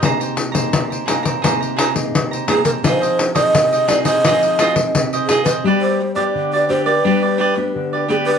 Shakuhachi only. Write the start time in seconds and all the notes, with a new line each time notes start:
2.49 G#4
2.65 A#4
2.85 C5
3.35 D#5
3.88 D5
4.04 D#5
5.27 G#4
5.44 B4
5.81 C5
6.15 D5
6.54 D5
6.69 C5
6.85 A#4
6.97 B4
8.10 G#4
8.26 B4